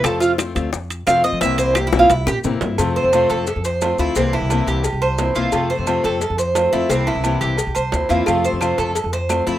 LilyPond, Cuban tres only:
\new Staff \with { instrumentName = "Cuban tres" } { \time 4/4 \key f \major \tempo 4 = 175 a'8 f'8 r2 f''8 ees''8 | e''8 c''8 \tuplet 3/2 { g'8 e'8 f'8 } e'8 g'8 r4 | r8 c''4 a'4 c''4 e'8 | c'8 e'4 g'4 c''4 f'8~ |
f'8 c''4 a'4 c''4 e'8 | c'8 e'4 g'4 c''4 f'8~ | f'8 c''4 a'4 c''4 e'8 | }